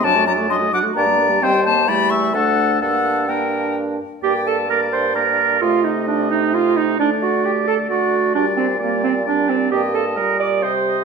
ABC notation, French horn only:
X:1
M:3/4
L:1/16
Q:1/4=131
K:Gm
V:1 name="French horn"
^F, A, F, A, F, A, F, A, B, G, B, G, | G,4 G,4 A,4 | B,4 B,6 z2 | B,4 B,4 B,4 |
A,12 | A,8 A,4 | G,4 G,4 G,4 | B,4 G,8 |]